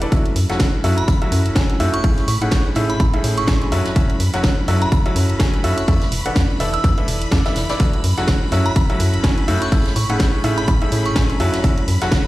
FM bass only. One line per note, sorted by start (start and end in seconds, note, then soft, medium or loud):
0.12 0.22 F#1 medium
0.36 0.46 F#2 loud
0.60 0.70 F#1 medium
0.84 1.02 F#2 medium
1.08 1.18 F#1 medium
1.32 1.50 F#2 loud
1.56 1.81 F#1 medium
1.80 1.90 F#2 medium
2.04 2.14 A1 loud
2.28 2.38 A2 loud
2.52 2.62 A1 loud
2.76 2.94 A2 medium
3.00 3.10 A1 loud
3.24 3.42 A2 loud
3.48 3.74 A1 medium
3.72 3.82 F#2 medium
3.96 4.06 F#1 loud
4.20 4.30 F#2 loud
4.44 4.54 F#1 loud
4.68 4.86 F#2 medium
4.92 5.02 F#1 medium
5.16 5.34 F#2 loud
5.40 5.65 F#1 medium
5.64 5.74 F#2 medium
5.88 5.98 E2 loud
6.12 6.22 E1 loud
6.36 6.46 E2 loud
6.60 6.78 E1 medium
6.84 6.94 E2 medium
7.08 7.26 E1 loud
7.32 7.42 E2 medium
7.56 7.66 E1 medium
7.80 7.90 F#1 loud
8.04 8.14 F#2 loud
8.28 8.38 F#1 medium
8.52 8.70 F#2 medium
8.76 8.86 F#1 loud
9.00 9.18 F#2 loud
9.24 9.49 F#1 medium
9.48 9.58 F#2 loud
9.72 9.82 A1 loud
9.96 10.06 A2 loud
10.20 10.30 A1 loud
10.44 10.62 A2 medium
10.68 10.78 A1 medium
10.92 11.10 A2 loud
11.16 11.41 A1 medium
11.40 11.50 F#2 medium
11.64 11.74 F#1 loud
11.88 11.98 F#2 loud
12.12 12.22 F#1 loud